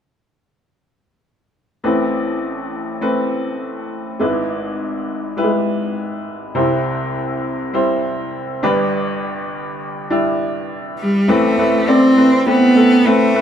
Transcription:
1.84 upright piano A1 A2 A3 C4 B4
3.01 upright piano A3 C4 B4
4.19 upright piano G#1 G#2 G#3 E4 B4
5.37 upright piano G3 E4 B4
5.43 upright piano G#3
6.55 upright piano C2 C3 G3 E4 C5
7.74 upright piano G3 E4 C5
8.63 upright piano G1 G2 G3 D4 B4
10.10 upright piano G3 D4 E4
10.99 cello G3
11.28 upright piano A1 A2 A3 C4 B4, cello A3
11.58 upright piano A3 C4 B4
11.87 upright piano A3 C4 D5, cello C4
12.17 upright piano A3 C4 B4
12.46 upright piano A3 C4 B4, cello B3
12.76 upright piano A3 C4 A4
13.05 upright piano A3 C4 B4, cello A3
13.34 upright piano A3 C4 B4

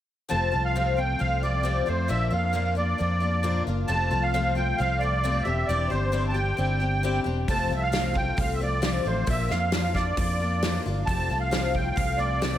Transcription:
0.29 fingered electric bass F1, twelve-string acoustic guitar F2 C3 F3 A3 C4 F4, accordion A5
0.52 fingered electric bass C2, twelve-string acoustic guitar F3 A3 C4 F4
0.65 accordion F5
0.75 twelve-string acoustic guitar F2 C3 F3 A3 C4 F4
0.97 twelve-string acoustic guitar F3 A3 C4 F4, accordion G5
1.19 fingered electric bass C2, twelve-string acoustic guitar F3 A3 C4 F4, accordion F5
1.42 twelve-string acoustic guitar F3 A3 C4 F4, accordion D5
1.63 twelve-string acoustic guitar F2 C3 F3 A3 C4 F4
1.86 fingered electric bass F2, twelve-string acoustic guitar F3 A3 C4 F4, accordion C5
2.08 fingered electric bass A#1, twelve-string acoustic guitar A#2 F3 A#3 D4 F4, accordion E5
2.30 fingered electric bass F2, twelve-string acoustic guitar A#3 D4 F4, accordion F5
2.53 twelve-string acoustic guitar A#2 F3 A#3 D4 F4
2.75 twelve-string acoustic guitar A#3 D4 F4, accordion D5
2.98 fingered electric bass F2, twelve-string acoustic guitar F3 A#3 D4 F4
3.20 twelve-string acoustic guitar A#3 D4 F4
3.43 twelve-string acoustic guitar A#2 F3 A#3 D4 F4
3.67 fingered electric bass F#1, twelve-string acoustic guitar A#3 D4 F4
3.87 fingered electric bass F1, twelve-string acoustic guitar F2 C3 F3 A3 C4 F4, accordion A5
4.11 fingered electric bass C2, twelve-string acoustic guitar F3 A3 C4 F4
4.22 accordion F5
4.34 twelve-string acoustic guitar F2 C3 F3 A3 C4 F4
4.55 twelve-string acoustic guitar F3 A3 C4 F4, accordion G5
4.77 fingered electric bass C2, twelve-string acoustic guitar F3 A3 C4, accordion F5
4.81 twelve-string acoustic guitar F4
4.99 twelve-string acoustic guitar C4 F4, accordion D5
5.03 twelve-string acoustic guitar F3 A3
5.24 twelve-string acoustic guitar F2 C3 F3 A3 C4 F4
5.43 fingered electric bass E1, twelve-string acoustic guitar D4 G4, accordion E5
5.47 twelve-string acoustic guitar C4
5.67 fingered electric bass E1, twelve-string acoustic guitar E3 C4 D4 G4, accordion D5
5.88 fingered electric bass G1, twelve-string acoustic guitar D4 G4, accordion C5
5.93 twelve-string acoustic guitar C4
6.12 twelve-string acoustic guitar E3 C4 D4 G4
6.29 accordion G5 A5
6.34 twelve-string acoustic guitar C4 D4 G4
6.57 fingered electric bass G1, twelve-string acoustic guitar E3 C4 D4 G4
6.80 twelve-string acoustic guitar C4 D4 G4
7.03 twelve-string acoustic guitar E3 C4 D4 G4
7.24 fingered electric bass E1, twelve-string acoustic guitar C4 D4 G4
7.48 fingered electric bass F1, twelve-string acoustic guitar F2 C3 F3 A3 C4 F4, accordion A5, kick, open hi-hat
7.70 fingered electric bass C2, twelve-string acoustic guitar F3 A3 C4 F4
7.75 accordion E5
7.83 accordion F5
7.92 twelve-string acoustic guitar F2 C3 F3 A3 C4 F4, snare, open hi-hat
8.14 twelve-string acoustic guitar F3 A3 C4 F4, accordion G5, kick
8.37 fingered electric bass C2, twelve-string acoustic guitar F3 A3 C4 F4, accordion F5, kick, open hi-hat
8.54 accordion E5
8.60 twelve-string acoustic guitar F3 A3 C4 F4, accordion D5
8.82 twelve-string acoustic guitar F2 C3 F3 A3 C4 F4, snare, open hi-hat
9.05 fingered electric bass A1, twelve-string acoustic guitar F3 A3 C4 F4, accordion C5
9.26 fingered electric bass A#1, twelve-string acoustic guitar A#2 F3 A#3 D4 F4, accordion E5, kick, open hi-hat
9.49 fingered electric bass F2, twelve-string acoustic guitar A#3 D4 F4, accordion F5, snare
9.72 twelve-string acoustic guitar A#2 F3 A#3 D4 F4, snare, open hi-hat
9.94 twelve-string acoustic guitar A#3 D4 F4, accordion D5, kick, snare
10.17 fingered electric bass F2, twelve-string acoustic guitar F3 A#3 D4 F4, kick, open hi-hat
10.40 twelve-string acoustic guitar A#3 D4 F4
10.62 twelve-string acoustic guitar A#2 F3 A#3 D4 F4, snare, open hi-hat
10.86 fingered electric bass G1, twelve-string acoustic guitar A#3 D4 F4
11.06 fingered electric bass F1, twelve-string acoustic guitar F2 C3 F3 A3 C4 F4, accordion A5, kick, open hi-hat
11.30 fingered electric bass C2, twelve-string acoustic guitar F3 A3 C4 F4
11.40 accordion F5
11.51 twelve-string acoustic guitar F2 C3 F3 A3 C4 F4, snare, open hi-hat
11.73 twelve-string acoustic guitar F3 A3 C4 F4, accordion G5, kick
11.91 accordion G5
11.95 fingered electric bass C2, twelve-string acoustic guitar F3 A3 C4 F4, accordion F5, kick, open hi-hat
12.18 twelve-string acoustic guitar F3 A3 C4 F4, accordion D5
12.42 twelve-string acoustic guitar F2 C3 F3 A3 C4 F4, snare, open hi-hat

